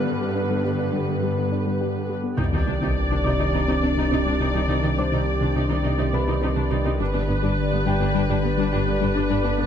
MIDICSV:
0, 0, Header, 1, 8, 480
1, 0, Start_track
1, 0, Key_signature, -3, "minor"
1, 0, Tempo, 576923
1, 62, Time_signature, 4, 2, 24, 8
1, 8041, End_track
2, 0, Start_track
2, 0, Title_t, "Felt piano"
2, 0, Program_c, 0, 0
2, 0, Control_c, 0, 64, 127
2, 0, Note_on_c, 0, 71, 26
2, 0, Note_on_c, 0, 83, 32
2, 0, Note_on_c, 0, 89, 33
2, 510, Note_off_c, 0, 71, 0
2, 512, Note_off_c, 0, 83, 0
2, 1227, Note_off_c, 0, 89, 0
2, 1975, Note_on_c, 0, 91, 32
2, 1997, Control_c, 0, 64, 0
2, 2121, Control_c, 0, 64, 127
2, 2697, Note_on_c, 0, 86, 31
2, 2699, Note_on_c, 0, 74, 28
2, 3385, Note_off_c, 0, 91, 0
2, 4106, Note_off_c, 0, 86, 0
2, 4107, Note_off_c, 0, 74, 0
2, 4146, Note_on_c, 0, 72, 31
2, 4147, Note_on_c, 0, 86, 33
2, 5106, Note_on_c, 0, 83, 41
2, 5107, Note_on_c, 0, 71, 30
2, 5551, Note_off_c, 0, 72, 0
2, 5551, Note_off_c, 0, 86, 0
2, 5839, Control_c, 0, 64, 0
2, 5958, Control_c, 0, 64, 127
2, 6511, Note_off_c, 0, 71, 0
2, 6511, Note_off_c, 0, 83, 0
2, 6543, Note_on_c, 0, 79, 41
2, 7949, Note_off_c, 0, 79, 0
2, 8041, End_track
3, 0, Start_track
3, 0, Title_t, "Analog synth pad"
3, 0, Program_c, 1, 89
3, 0, Note_on_c, 1, 50, 49
3, 0, Note_on_c, 1, 59, 52
3, 0, Note_on_c, 1, 67, 47
3, 0, Note_on_c, 1, 71, 50
3, 1945, Note_off_c, 1, 67, 0
3, 1946, Note_off_c, 1, 59, 0
3, 1979, Note_off_c, 1, 71, 0
3, 1981, Note_off_c, 1, 50, 0
3, 1981, Note_on_c, 1, 51, 48
3, 1981, Note_on_c, 1, 62, 49
3, 1982, Note_on_c, 1, 60, 52
3, 1984, Note_on_c, 1, 67, 52
3, 5788, Note_off_c, 1, 51, 0
3, 5788, Note_off_c, 1, 60, 0
3, 5788, Note_off_c, 1, 62, 0
3, 5790, Note_off_c, 1, 67, 0
3, 5815, Note_on_c, 1, 62, 52
3, 5815, Note_on_c, 1, 74, 54
3, 5816, Note_on_c, 1, 50, 52
3, 5819, Note_on_c, 1, 67, 54
3, 8041, Note_off_c, 1, 50, 0
3, 8041, Note_off_c, 1, 62, 0
3, 8041, Note_off_c, 1, 67, 0
3, 8041, Note_off_c, 1, 74, 0
3, 8041, End_track
4, 0, Start_track
4, 0, Title_t, "Viola section"
4, 0, Program_c, 2, 48
4, 0, Note_on_c, 2, 50, 49
4, 0, Note_on_c, 2, 71, 44
4, 1781, Note_off_c, 2, 50, 0
4, 1784, Note_off_c, 2, 71, 0
4, 1979, Note_on_c, 2, 74, 44
4, 1981, Note_on_c, 2, 63, 46
4, 2029, Note_off_c, 2, 63, 0
4, 2104, Note_on_c, 2, 63, 36
4, 2151, Note_off_c, 2, 63, 0
4, 2222, Note_on_c, 2, 62, 34
4, 2270, Note_off_c, 2, 62, 0
4, 2342, Note_on_c, 2, 63, 48
4, 2390, Note_off_c, 2, 63, 0
4, 2584, Note_on_c, 2, 62, 36
4, 2631, Note_off_c, 2, 62, 0
4, 2702, Note_on_c, 2, 63, 42
4, 2750, Note_off_c, 2, 63, 0
4, 2817, Note_on_c, 2, 63, 34
4, 2866, Note_off_c, 2, 63, 0
4, 2944, Note_on_c, 2, 63, 46
4, 2991, Note_off_c, 2, 63, 0
4, 3063, Note_on_c, 2, 63, 34
4, 3110, Note_off_c, 2, 63, 0
4, 3185, Note_on_c, 2, 62, 37
4, 3232, Note_off_c, 2, 62, 0
4, 3309, Note_on_c, 2, 63, 57
4, 3355, Note_off_c, 2, 63, 0
4, 3429, Note_on_c, 2, 63, 39
4, 3475, Note_off_c, 2, 63, 0
4, 3553, Note_on_c, 2, 62, 41
4, 3599, Note_off_c, 2, 62, 0
4, 3659, Note_on_c, 2, 63, 48
4, 3708, Note_off_c, 2, 63, 0
4, 3784, Note_on_c, 2, 63, 42
4, 3831, Note_off_c, 2, 63, 0
4, 3901, Note_on_c, 2, 63, 49
4, 3949, Note_off_c, 2, 63, 0
4, 4016, Note_on_c, 2, 63, 35
4, 4065, Note_off_c, 2, 63, 0
4, 4140, Note_on_c, 2, 62, 34
4, 4189, Note_off_c, 2, 62, 0
4, 4256, Note_on_c, 2, 63, 47
4, 4305, Note_off_c, 2, 63, 0
4, 4502, Note_on_c, 2, 62, 33
4, 4550, Note_off_c, 2, 62, 0
4, 4622, Note_on_c, 2, 63, 44
4, 4670, Note_off_c, 2, 63, 0
4, 4737, Note_on_c, 2, 63, 38
4, 4786, Note_off_c, 2, 63, 0
4, 4855, Note_on_c, 2, 63, 50
4, 4905, Note_off_c, 2, 63, 0
4, 4977, Note_on_c, 2, 63, 31
4, 5026, Note_off_c, 2, 63, 0
4, 5105, Note_on_c, 2, 62, 37
4, 5152, Note_off_c, 2, 62, 0
4, 5219, Note_on_c, 2, 63, 50
4, 5268, Note_off_c, 2, 63, 0
4, 5350, Note_on_c, 2, 63, 37
4, 5396, Note_off_c, 2, 63, 0
4, 5455, Note_on_c, 2, 62, 37
4, 5504, Note_off_c, 2, 62, 0
4, 5580, Note_on_c, 2, 63, 46
4, 5628, Note_off_c, 2, 63, 0
4, 5701, Note_on_c, 2, 63, 40
4, 5749, Note_off_c, 2, 63, 0
4, 5787, Note_off_c, 2, 74, 0
4, 5826, Note_on_c, 2, 71, 49
4, 5828, Note_on_c, 2, 62, 46
4, 5875, Note_off_c, 2, 62, 0
4, 5935, Note_on_c, 2, 62, 36
4, 5984, Note_off_c, 2, 62, 0
4, 6055, Note_on_c, 2, 59, 30
4, 6104, Note_off_c, 2, 59, 0
4, 6182, Note_on_c, 2, 62, 53
4, 6230, Note_off_c, 2, 62, 0
4, 6426, Note_on_c, 2, 59, 37
4, 6474, Note_off_c, 2, 59, 0
4, 6547, Note_on_c, 2, 62, 41
4, 6594, Note_off_c, 2, 62, 0
4, 6667, Note_on_c, 2, 62, 35
4, 6714, Note_off_c, 2, 62, 0
4, 6778, Note_on_c, 2, 62, 54
4, 6827, Note_off_c, 2, 62, 0
4, 6904, Note_on_c, 2, 62, 42
4, 6951, Note_off_c, 2, 62, 0
4, 7020, Note_on_c, 2, 59, 39
4, 7068, Note_off_c, 2, 59, 0
4, 7146, Note_on_c, 2, 62, 60
4, 7193, Note_off_c, 2, 62, 0
4, 7261, Note_on_c, 2, 62, 42
4, 7309, Note_off_c, 2, 62, 0
4, 7386, Note_on_c, 2, 59, 38
4, 7434, Note_off_c, 2, 59, 0
4, 7498, Note_on_c, 2, 62, 46
4, 7547, Note_off_c, 2, 62, 0
4, 7625, Note_on_c, 2, 62, 39
4, 7673, Note_off_c, 2, 62, 0
4, 7743, Note_on_c, 2, 62, 46
4, 7791, Note_off_c, 2, 62, 0
4, 7851, Note_on_c, 2, 62, 40
4, 7901, Note_off_c, 2, 62, 0
4, 7968, Note_on_c, 2, 59, 38
4, 8018, Note_off_c, 2, 59, 0
4, 8041, Note_off_c, 2, 71, 0
4, 8041, End_track
5, 0, Start_track
5, 0, Title_t, "Synth arpeggio sound"
5, 0, Program_c, 3, 84
5, 59, Note_on_c, 3, 55, 62
5, 132, Note_off_c, 3, 55, 0
5, 175, Note_on_c, 3, 67, 48
5, 249, Note_off_c, 3, 67, 0
5, 296, Note_on_c, 3, 62, 44
5, 370, Note_off_c, 3, 62, 0
5, 416, Note_on_c, 3, 55, 70
5, 490, Note_off_c, 3, 55, 0
5, 537, Note_on_c, 3, 67, 42
5, 611, Note_off_c, 3, 67, 0
5, 657, Note_on_c, 3, 62, 48
5, 730, Note_off_c, 3, 62, 0
5, 773, Note_on_c, 3, 55, 68
5, 847, Note_off_c, 3, 55, 0
5, 904, Note_on_c, 3, 59, 44
5, 976, Note_off_c, 3, 59, 0
5, 1023, Note_on_c, 3, 55, 66
5, 1095, Note_off_c, 3, 55, 0
5, 1149, Note_on_c, 3, 62, 45
5, 1219, Note_off_c, 3, 62, 0
5, 1266, Note_on_c, 3, 62, 49
5, 1337, Note_off_c, 3, 62, 0
5, 1385, Note_on_c, 3, 55, 65
5, 1456, Note_off_c, 3, 55, 0
5, 1505, Note_on_c, 3, 67, 49
5, 1576, Note_off_c, 3, 67, 0
5, 1744, Note_on_c, 3, 55, 67
5, 1815, Note_off_c, 3, 55, 0
5, 1860, Note_on_c, 3, 59, 42
5, 1932, Note_off_c, 3, 59, 0
5, 1974, Note_on_c, 3, 48, 71
5, 2048, Note_off_c, 3, 48, 0
5, 2096, Note_on_c, 3, 51, 51
5, 2169, Note_off_c, 3, 51, 0
5, 2219, Note_on_c, 3, 55, 49
5, 2292, Note_off_c, 3, 55, 0
5, 2341, Note_on_c, 3, 48, 73
5, 2413, Note_off_c, 3, 48, 0
5, 2587, Note_on_c, 3, 51, 46
5, 2657, Note_off_c, 3, 51, 0
5, 2700, Note_on_c, 3, 48, 75
5, 2773, Note_off_c, 3, 48, 0
5, 2824, Note_on_c, 3, 51, 52
5, 2895, Note_off_c, 3, 51, 0
5, 2946, Note_on_c, 3, 48, 70
5, 3017, Note_off_c, 3, 48, 0
5, 3060, Note_on_c, 3, 60, 47
5, 3133, Note_off_c, 3, 60, 0
5, 3181, Note_on_c, 3, 60, 53
5, 3253, Note_off_c, 3, 60, 0
5, 3301, Note_on_c, 3, 48, 74
5, 3373, Note_off_c, 3, 48, 0
5, 3421, Note_on_c, 3, 60, 54
5, 3493, Note_off_c, 3, 60, 0
5, 3544, Note_on_c, 3, 55, 51
5, 3615, Note_off_c, 3, 55, 0
5, 3660, Note_on_c, 3, 48, 64
5, 3733, Note_off_c, 3, 48, 0
5, 3784, Note_on_c, 3, 55, 46
5, 3855, Note_off_c, 3, 55, 0
5, 3898, Note_on_c, 3, 48, 69
5, 3971, Note_off_c, 3, 48, 0
5, 4018, Note_on_c, 3, 51, 53
5, 4091, Note_off_c, 3, 51, 0
5, 4140, Note_on_c, 3, 55, 51
5, 4213, Note_off_c, 3, 55, 0
5, 4258, Note_on_c, 3, 48, 73
5, 4331, Note_off_c, 3, 48, 0
5, 4498, Note_on_c, 3, 51, 43
5, 4571, Note_off_c, 3, 51, 0
5, 4620, Note_on_c, 3, 48, 72
5, 4692, Note_off_c, 3, 48, 0
5, 4736, Note_on_c, 3, 51, 54
5, 4810, Note_off_c, 3, 51, 0
5, 4855, Note_on_c, 3, 48, 70
5, 4929, Note_off_c, 3, 48, 0
5, 4978, Note_on_c, 3, 60, 50
5, 5051, Note_off_c, 3, 60, 0
5, 5099, Note_on_c, 3, 60, 52
5, 5172, Note_off_c, 3, 60, 0
5, 5221, Note_on_c, 3, 48, 71
5, 5293, Note_off_c, 3, 48, 0
5, 5337, Note_on_c, 3, 60, 51
5, 5410, Note_off_c, 3, 60, 0
5, 5464, Note_on_c, 3, 55, 53
5, 5535, Note_off_c, 3, 55, 0
5, 5583, Note_on_c, 3, 48, 67
5, 5655, Note_off_c, 3, 48, 0
5, 5706, Note_on_c, 3, 55, 48
5, 5776, Note_off_c, 3, 55, 0
5, 5823, Note_on_c, 3, 55, 73
5, 5894, Note_off_c, 3, 55, 0
5, 5940, Note_on_c, 3, 59, 49
5, 6012, Note_off_c, 3, 59, 0
5, 6059, Note_on_c, 3, 62, 51
5, 6132, Note_off_c, 3, 62, 0
5, 6178, Note_on_c, 3, 55, 70
5, 6251, Note_off_c, 3, 55, 0
5, 6420, Note_on_c, 3, 59, 49
5, 6493, Note_off_c, 3, 59, 0
5, 6535, Note_on_c, 3, 55, 69
5, 6609, Note_off_c, 3, 55, 0
5, 6655, Note_on_c, 3, 59, 50
5, 6729, Note_off_c, 3, 59, 0
5, 6773, Note_on_c, 3, 55, 70
5, 6848, Note_off_c, 3, 55, 0
5, 6898, Note_on_c, 3, 67, 52
5, 6971, Note_off_c, 3, 67, 0
5, 7015, Note_on_c, 3, 67, 50
5, 7089, Note_off_c, 3, 67, 0
5, 7133, Note_on_c, 3, 55, 71
5, 7208, Note_off_c, 3, 55, 0
5, 7259, Note_on_c, 3, 67, 55
5, 7332, Note_off_c, 3, 67, 0
5, 7373, Note_on_c, 3, 62, 50
5, 7448, Note_off_c, 3, 62, 0
5, 7495, Note_on_c, 3, 55, 72
5, 7569, Note_off_c, 3, 55, 0
5, 7614, Note_on_c, 3, 62, 45
5, 7688, Note_off_c, 3, 62, 0
5, 7738, Note_on_c, 3, 55, 70
5, 7811, Note_off_c, 3, 55, 0
5, 7856, Note_on_c, 3, 59, 54
5, 7930, Note_off_c, 3, 59, 0
5, 7975, Note_on_c, 3, 62, 54
5, 8041, Note_off_c, 3, 62, 0
5, 8041, End_track
6, 0, Start_track
6, 0, Title_t, "Cello section"
6, 0, Program_c, 4, 48
6, 0, Note_on_c, 4, 43, 49
6, 1817, Note_off_c, 4, 43, 0
6, 1982, Note_on_c, 4, 48, 51
6, 2030, Note_off_c, 4, 48, 0
6, 2105, Note_on_c, 4, 48, 34
6, 2152, Note_off_c, 4, 48, 0
6, 2223, Note_on_c, 4, 48, 30
6, 2270, Note_off_c, 4, 48, 0
6, 2345, Note_on_c, 4, 48, 51
6, 2393, Note_off_c, 4, 48, 0
6, 2580, Note_on_c, 4, 48, 38
6, 2629, Note_off_c, 4, 48, 0
6, 2703, Note_on_c, 4, 48, 49
6, 2751, Note_off_c, 4, 48, 0
6, 2825, Note_on_c, 4, 48, 35
6, 2872, Note_off_c, 4, 48, 0
6, 2944, Note_on_c, 4, 48, 50
6, 2991, Note_off_c, 4, 48, 0
6, 3065, Note_on_c, 4, 48, 33
6, 3112, Note_off_c, 4, 48, 0
6, 3187, Note_on_c, 4, 48, 35
6, 3234, Note_off_c, 4, 48, 0
6, 3304, Note_on_c, 4, 48, 55
6, 3352, Note_off_c, 4, 48, 0
6, 3428, Note_on_c, 4, 48, 36
6, 3475, Note_off_c, 4, 48, 0
6, 3546, Note_on_c, 4, 48, 37
6, 3593, Note_off_c, 4, 48, 0
6, 3665, Note_on_c, 4, 48, 49
6, 3713, Note_off_c, 4, 48, 0
6, 3788, Note_on_c, 4, 48, 32
6, 3835, Note_off_c, 4, 48, 0
6, 3904, Note_on_c, 4, 48, 52
6, 3952, Note_off_c, 4, 48, 0
6, 4028, Note_on_c, 4, 48, 35
6, 4075, Note_off_c, 4, 48, 0
6, 4147, Note_on_c, 4, 48, 35
6, 4194, Note_off_c, 4, 48, 0
6, 4268, Note_on_c, 4, 48, 52
6, 4315, Note_off_c, 4, 48, 0
6, 4507, Note_on_c, 4, 48, 36
6, 4554, Note_off_c, 4, 48, 0
6, 4623, Note_on_c, 4, 48, 57
6, 4671, Note_off_c, 4, 48, 0
6, 4747, Note_on_c, 4, 48, 39
6, 4794, Note_off_c, 4, 48, 0
6, 4863, Note_on_c, 4, 48, 56
6, 4911, Note_off_c, 4, 48, 0
6, 4984, Note_on_c, 4, 48, 37
6, 5032, Note_off_c, 4, 48, 0
6, 5099, Note_on_c, 4, 48, 35
6, 5148, Note_off_c, 4, 48, 0
6, 5219, Note_on_c, 4, 48, 55
6, 5267, Note_off_c, 4, 48, 0
6, 5340, Note_on_c, 4, 48, 37
6, 5389, Note_off_c, 4, 48, 0
6, 5459, Note_on_c, 4, 48, 41
6, 5508, Note_off_c, 4, 48, 0
6, 5580, Note_on_c, 4, 48, 49
6, 5628, Note_off_c, 4, 48, 0
6, 5704, Note_on_c, 4, 48, 34
6, 5752, Note_off_c, 4, 48, 0
6, 5823, Note_on_c, 4, 43, 52
6, 5871, Note_off_c, 4, 43, 0
6, 5944, Note_on_c, 4, 43, 36
6, 5992, Note_off_c, 4, 43, 0
6, 6062, Note_on_c, 4, 43, 37
6, 6110, Note_off_c, 4, 43, 0
6, 6181, Note_on_c, 4, 43, 58
6, 6229, Note_off_c, 4, 43, 0
6, 6427, Note_on_c, 4, 43, 39
6, 6474, Note_off_c, 4, 43, 0
6, 6545, Note_on_c, 4, 43, 55
6, 6592, Note_off_c, 4, 43, 0
6, 6660, Note_on_c, 4, 43, 38
6, 6708, Note_off_c, 4, 43, 0
6, 6786, Note_on_c, 4, 43, 55
6, 6833, Note_off_c, 4, 43, 0
6, 6904, Note_on_c, 4, 43, 40
6, 6951, Note_off_c, 4, 43, 0
6, 7022, Note_on_c, 4, 43, 38
6, 7070, Note_off_c, 4, 43, 0
6, 7150, Note_on_c, 4, 43, 55
6, 7196, Note_off_c, 4, 43, 0
6, 7270, Note_on_c, 4, 43, 37
6, 7316, Note_off_c, 4, 43, 0
6, 7391, Note_on_c, 4, 43, 41
6, 7437, Note_off_c, 4, 43, 0
6, 7511, Note_on_c, 4, 43, 52
6, 7558, Note_off_c, 4, 43, 0
6, 7631, Note_on_c, 4, 43, 35
6, 7677, Note_off_c, 4, 43, 0
6, 7745, Note_on_c, 4, 43, 51
6, 7792, Note_off_c, 4, 43, 0
6, 7870, Note_on_c, 4, 43, 41
6, 7916, Note_off_c, 4, 43, 0
6, 7986, Note_on_c, 4, 43, 36
6, 8033, Note_off_c, 4, 43, 0
6, 8041, End_track
7, 0, Start_track
7, 0, Title_t, "Sub bass"
7, 0, Program_c, 5, 38
7, 1981, Note_on_c, 5, 36, 60
7, 5825, Note_on_c, 5, 31, 58
7, 5837, Note_off_c, 5, 36, 0
7, 8041, Note_off_c, 5, 31, 0
7, 8041, End_track
8, 0, Start_track
8, 0, Title_t, "Sub drop"
8, 0, Program_c, 6, 103
8, 1982, Note_on_c, 6, 60, 46
8, 3902, Note_off_c, 6, 60, 0
8, 8041, End_track
0, 0, End_of_file